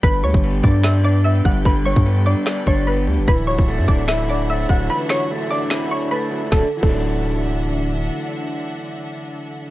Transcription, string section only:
\new Staff \with { instrumentName = "String section" } { \time 4/4 \key d \major \tempo 4 = 148 << { <g b' g''>1~ | <g b' g''>1 | <d e'' fis''>1~ | <d e'' fis''>1 |
<d d' e'' fis''>1~ | <d d' e'' fis''>1 | } \\ { d'1~ | d'1~ | d'1~ | d'1 |
r1 | r1 | } >> }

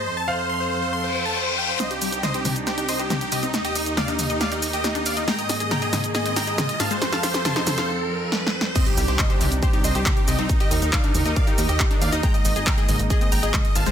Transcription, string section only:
\new Staff \with { instrumentName = "String section" } { \time 4/4 \key c \minor \tempo 4 = 138 << { <f, f a'>1 | <c, c ees'>1 | <ees, ees g'>1 | <aes, ees aes'>1 |
<f, f a'>1 | <c g ees'>1 | <ees bes'>1 | aes1 | } \\ { c'1 | d'1 | bes1~ | bes1 |
c'1 | d'1 | g'1 | bes1 | } >> }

